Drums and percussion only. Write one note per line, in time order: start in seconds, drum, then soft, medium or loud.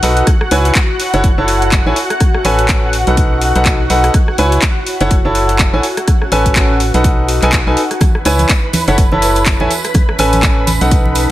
0.03 open hi-hat loud
0.17 closed hi-hat soft
0.27 kick loud
0.27 cross-stick medium
0.27 closed hi-hat medium
0.41 cross-stick medium
0.51 open hi-hat loud
0.65 closed hi-hat medium
0.75 kick loud
0.75 clap loud
0.75 closed hi-hat medium
1.00 open hi-hat medium
1.14 closed hi-hat soft
1.24 kick loud
1.24 closed hi-hat medium
1.48 open hi-hat loud
1.62 closed hi-hat soft
1.72 kick loud
1.72 clap loud
1.72 closed hi-hat medium
1.96 open hi-hat medium
2.10 cross-stick medium
2.10 closed hi-hat medium
2.20 kick loud
2.20 cross-stick medium
2.20 closed hi-hat medium
2.34 cross-stick medium
2.45 open hi-hat loud
2.59 closed hi-hat medium
2.69 kick loud
2.69 clap loud
2.69 closed hi-hat medium
2.93 open hi-hat medium
3.07 closed hi-hat soft
3.17 kick loud
3.17 closed hi-hat medium
3.41 open hi-hat medium
3.56 closed hi-hat medium
3.65 kick loud
3.65 clap loud
3.65 closed hi-hat medium
3.90 open hi-hat medium
4.04 cross-stick medium
4.04 closed hi-hat soft
4.14 kick loud
4.14 cross-stick medium
4.14 closed hi-hat medium
4.28 cross-stick medium
4.38 open hi-hat loud
4.52 closed hi-hat medium
4.62 kick loud
4.62 clap loud
4.62 closed hi-hat medium
4.86 open hi-hat medium
5.01 closed hi-hat medium
5.11 kick loud
5.11 closed hi-hat medium
5.35 open hi-hat medium
5.49 closed hi-hat medium
5.59 kick loud
5.59 clap loud
5.59 closed hi-hat medium
5.83 open hi-hat medium
5.97 cross-stick medium
5.97 closed hi-hat medium
6.08 kick loud
6.08 cross-stick medium
6.08 closed hi-hat medium
6.22 cross-stick medium
6.32 open hi-hat loud
6.46 kick medium
6.46 closed hi-hat medium
6.56 kick loud
6.56 clap loud
6.56 closed hi-hat medium
6.80 open hi-hat medium
6.94 closed hi-hat medium
7.04 kick loud
7.04 closed hi-hat medium
7.28 open hi-hat loud
7.42 clap soft
7.42 closed hi-hat medium
7.52 kick loud
7.52 clap loud
7.52 closed hi-hat medium
7.77 open hi-hat medium
7.91 cross-stick medium
7.91 closed hi-hat medium
8.01 kick loud
8.01 cross-stick medium
8.01 closed hi-hat medium
8.01 tambourine soft
8.01 high conga medium
8.15 cross-stick medium
8.25 open hi-hat loud
8.25 tambourine loud
8.39 closed hi-hat medium
8.39 tambourine soft
8.39 high conga medium
8.49 kick loud
8.49 clap loud
8.49 closed hi-hat medium
8.49 tambourine soft
8.73 open hi-hat loud
8.73 tambourine medium
8.73 high conga loud
8.88 closed hi-hat medium
8.88 tambourine soft
8.98 kick loud
8.98 closed hi-hat medium
8.98 tambourine soft
9.12 high conga medium
9.22 open hi-hat loud
9.22 tambourine medium
9.35 closed hi-hat medium
9.35 tambourine soft
9.45 kick loud
9.45 clap loud
9.45 closed hi-hat medium
9.45 tambourine soft
9.60 high conga loud
9.71 open hi-hat medium
9.71 tambourine medium
9.84 cross-stick medium
9.84 closed hi-hat medium
9.84 tambourine medium
9.94 kick loud
9.94 cross-stick medium
9.94 closed hi-hat medium
9.94 tambourine soft
9.94 high conga medium
10.09 cross-stick medium
10.19 open hi-hat loud
10.19 tambourine medium
10.33 closed hi-hat medium
10.33 tambourine soft
10.33 high conga medium
10.43 kick loud
10.43 clap loud
10.43 closed hi-hat medium
10.43 tambourine soft
10.67 open hi-hat medium
10.67 tambourine loud
10.67 high conga medium
10.81 closed hi-hat medium
10.81 tambourine soft
10.91 kick loud
10.91 closed hi-hat medium
10.91 tambourine soft
11.05 high conga medium
11.15 open hi-hat loud
11.15 tambourine loud